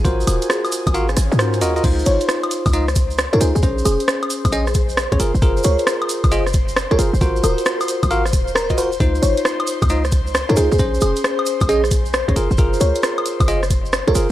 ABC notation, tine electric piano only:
X:1
M:4/4
L:1/16
Q:"Swing 16ths" 1/4=134
K:Db
V:1 name="Tine electric piano"
[FGBc]8 [FGBf] z3 [FGBc]2 [FGBe] [FGBe] | [EFc]8 [EFe] z4 [EFd] [EFc] z | [DAc]8 [DAe] z4 [DAd] [FAB] z | [FAB]8 [FAe] z4 [FAd] [FAB] z |
[FGBc]8 [FGBf] z4 [FGBe] [FGBc] z | [EFc]8 [EFe] z4 [EFd] [EFc] z | [DAc]8 [DAe] z4 [DAd] [FAB] z | [FAB]8 [FAe] z4 [FAd] [FAB] z |]